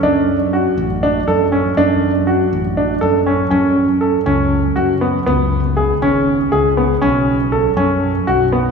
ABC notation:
X:1
M:7/8
L:1/8
Q:1/4=120
K:F#m
V:1 name="Grand piano"
D2 F2 D A C | D2 F2 D A C | C2 A C2 F B, | B,2 G C2 G B, |
C2 A C2 F B, |]
V:2 name="Fingered electric bass" clef=bass
F,,3 A,,,2 F,,2 | F,,3 A,,,2 F,,2 | F,,3 C,,2 F,,2 | C,,3 G,,,2 C,,2 |
B,,,3 F,,2 B,,,2 |]